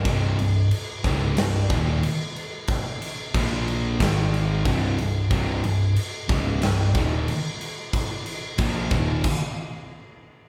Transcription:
<<
  \new Staff \with { instrumentName = "Distorted electric guitar" } { \clef bass \time 4/4 \key ees \lydian \tempo 4 = 92 <c, g, c>8 <c, g,>8 r8 <des, aes, des>8 <c, g,>8 <ees, bes, ees>8 r4 | r4 <bes, f bes>4 <aes, ees aes>4 <c, g, c>8 <c, g,>8 | <c, g, c>8 <c, g,>8 r8 <des, aes, des>8 <c, g,>8 <ees, bes, ees>8 r4 | r4 <bes, f bes>8 <ees, bes, ees>8 r2 | }
  \new Staff \with { instrumentName = "Distorted electric guitar" } { \clef bass \time 4/4 \key ees \lydian <c, g, c>8 <c, g,>8 r8 <des, aes, des>8 <c, g,>8 <ees, bes, ees>8 r4 | r4 <bes, f bes>4 <aes, ees aes>4 <c, g, c>8 <c, g,>8 | <c, g, c>8 <c, g,>8 r8 <des, aes, des>8 <c, g,>8 <ees, bes, ees>8 r4 | r4 <bes, f bes>8 <ees, bes, ees>8 r2 | }
  \new Staff \with { instrumentName = "Overdriven electric guitar" } { \clef bass \time 4/4 \key ees \lydian <c, g, c>8 <c, g,>8 r8 <des, aes, des>8 <c, g,>8 <ees, bes, ees>8 r4 | r4 <bes, f bes>4 <aes, ees aes>4 <c, g, c>8 <c, g,>8 | <c, g, c>8 <c, g,>8 r8 <des, aes, des>8 <c, g,>8 <ees, bes, ees>8 r4 | r4 <bes, f bes>8 <ees, bes, ees>8 r2 | }
  \new Staff \with { instrumentName = "Picked electric bass" } { \clef bass \time 4/4 \key ees \lydian c,,8 c,,8 r8 des,,8 c,,8 ees,,8 r4 | r4 bes,,4 aes,,4 c,,8 c,,8 | c,,8 c,,8 r8 des,,8 c,,8 ees,,8 r4 | r4 bes,,8 ees,,8 r2 | }
  \new DrumStaff \with { instrumentName = "Drums" } \drummode { \time 4/4 <cymc bd>8 cymc8 cymc8 <cymc bd>8 <cymc sn>8 <cymc bd>8 cymc8 cymc8 | <cymc bd>8 cymc8 <cymc bd>8 cymc8 <cymc bd sn>8 cymc8 <cymc bd>8 cymc8 | <cymc bd>8 cymc8 cymc8 <cymc bd>8 <cymc sn>8 <cymc bd>8 cymc8 cymc8 | <cymc bd>8 cymc8 <cymc bd>8 <cymc bd>8 <cymc bd>4 r4 | }
>>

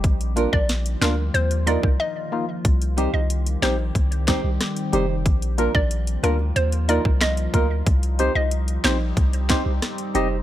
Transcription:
<<
  \new Staff \with { instrumentName = "Synth pluck" } { \time 4/4 \key c \minor \tempo 4 = 92 r8. d''16 r8 bes'16 r16 c''16 r16 d''16 r16 ees''8. r16 | r8. ees''16 r8 c''16 r2 r16 | r8. d''16 r8 bes'16 r16 c''16 r16 d''16 r16 ees''8. r16 | r8. ees''16 r8 c''16 r2 r16 | }
  \new Staff \with { instrumentName = "Nylon-string guitar" } { \time 4/4 \key c \minor r8 <d' f' bes'>8 r8 <d' f' bes'>8 r8 <ees' f' bes'>8 r4 | r8 <ees' g' c''>8 r8 <ees' g' c''>8 r8 <ees' g' c''>8 r8 <ees' g' c''>8 | r8 <d' f' bes'>8 r8 <d' f' bes'>8 r8 <ees' f' bes'>8 r8 <ees' f' bes'>8 | r8 <ees' g' c''>8 r8 <ees' g' c''>8 r8 <ees' g' c''>8 r8 <ees' g' c''>8 | }
  \new Staff \with { instrumentName = "Synth stab" } { \time 4/4 \key c \minor r8 <bes d' f'>8 r8 <bes d' f'>8 r8 <bes ees' f'>8 r8 <bes ees' f'>8 | r8 <g c' ees' g'>8 r8 <g c' ees' g'>8 r8 <g c' ees' g'>8 r8 <g c' ees' g'>8 | r8 <bes d' f' bes'>8 r8 <bes d' f' bes'>8 r8 <bes ees' f' bes'>8 r8 <bes ees' f' bes'>8 | r8 <c' ees' g' c''>8 r8 <c' ees' g' c''>8 r8 <c' ees' g' c''>8 r8 <c' ees' g' ees''>8 | }
  \new Staff \with { instrumentName = "Ambient pad" } { \time 4/4 \key c \minor << { <f bes f'>1 | <g c' g'>1 | <bes f'>1 | <g c' g'>1 | } \\ { r1 | ees1 | r2 ees'2~ | ees'1 | } >> }
  \new Staff \with { instrumentName = "Sub bass" } { \clef bass \time 4/4 \key c \minor bes,,8. bes,,8. d,8 ees,8. c,16 r4 | c,8. c,8. bes,,8 c,8. c,16 r8 f,,8 | bes,,8. bes,,8. d,8 ees,8. c,8. d,8 | c,8. c,8. bes,,8 c,8. c,16 r8 f,,8 | }
  \new DrumStaff \with { instrumentName = "Drums" } \drummode { \time 4/4 <hh bd>16 hh16 hh16 bd16 <hh sn>16 hh16 <hc hh sn>8 hh16 hh16 hh16 bd16 r4 | <hh bd>16 hh16 hh8 hh16 hh16 <hc hh sn>8 <hh bd>16 hh16 <hc hh bd sn>8 <hh ss sn>16 hh16 hh8 | <hh bd>16 hh16 hh16 bd16 hh16 hh16 hh8 hh16 hh16 hh16 bd16 <hc hh ss sn>16 hh16 <hh bd>8 | <hh bd>16 hh16 hh8 hh16 hh16 <hc hh sn>8 <hh bd>16 hh16 <hc hh bd sn>8 <hh ss sn>16 hh16 hh8 | }
>>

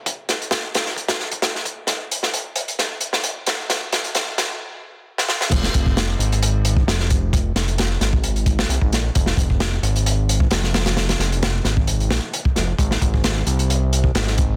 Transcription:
<<
  \new Staff \with { instrumentName = "Analog synth bass" } { \clef bass \time 4/4 \key f \minor \tempo 4 = 132 r1 | r1 | r1 | f,,8 f,,4 aes,,4. f,,4~ |
f,,8 f,,4 aes,,4. c,16 aes,,16 bes,,8 | f,,8 f,,4 aes,,4. f,,4~ | f,,8 f,,4 aes,,4 bes,,16 r8. f,,8 | aes,,8 aes,,4 c,4. aes,,4 | }
  \new DrumStaff \with { instrumentName = "Drums" } \drummode { \time 4/4 <hh bd>8 <hh sn>16 hh16 <hh sn>8 <hh sn>16 sn16 <hh bd>16 <hh sn>16 sn16 <hh bd>16 <hh sn>16 sn16 <hh bd>8 | <hh sn>8 hh16 sn16 hh8 hh16 hh16 <hh sn>8 hh16 sn16 hh8 <hh sn>8 | <hh sn>8 <hh sn>16 hh16 <hh sn>8 <hh sn>8 r4 r16 sn16 sn16 sn16 | <cymc hh bd>16 sn16 <hh bd>16 bd16 <hh sn>8 hh16 hh16 hh8 hh16 bd16 <hh sn>16 sn16 <hh bd>8 |
<hh bd>8 <hh sn>16 hh16 <hh sn>8 <hh sn>16 bd16 hh16 hh16 <hh bd>16 sn16 hh16 bd16 <hh sn>8 | <hh bd>16 sn16 <hh bd>16 bd16 <hh sn>8 hh16 hh16 hh8 hh16 bd16 <hh sn>16 sn16 <hh sn>16 <hh sn>16 | <hh sn>16 <hh sn>16 <hh sn>16 hh16 <hh sn>8 <hh sn>16 bd16 hh16 hh16 <hh sn>8 hh16 bd16 <hh sn>8 | <hh bd>16 sn16 <hh bd>16 bd16 <hh sn>8 hh16 hh16 hh8 hh16 bd16 <hh sn>16 sn16 <hh bd>8 | }
>>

